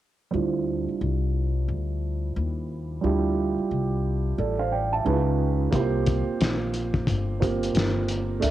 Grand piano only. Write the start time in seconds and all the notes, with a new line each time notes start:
0.31 G3 D4 E4 F4
0.35 C5
3.01 G3 D4 E4 F4
3.05 G4
4.38 A4 D5
4.59 C5 F5
4.72 D5 G5
4.93 E5 A5
5.04 G#3 C#4 D#4 E4 B4
5.12 F4
5.71 A#3 C4 E4 G4
5.75 C5
5.79 F4
7.40 A#3 C4 F4 G4 A#4
8.40 A3 D4 A4 E5
8.44 A#4